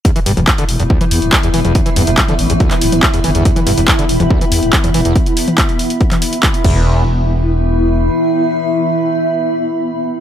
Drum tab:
CC |----------------|----------------|----------------|--------------x-|
HH |xxoxxxox-xoxxxox|xxoxxxoxxxoxxxox|xxoxxxox-xoxxxox|xxoxxxoxxxoxxx--|
CP |----x-------x---|----x----x--x---|----x-------x---|----x----x--x---|
T2 |---o-----o-----o|-----o-----o----|-o-----o-----o--|---o-----o------|
BD |o---o---o---o---|o---o---o---o---|o---o---o---o---|o---o---o---o-o-|

CC |----------------|----------------|
HH |----------------|----------------|
CP |----------------|----------------|
T2 |----------------|----------------|
BD |----------------|----------------|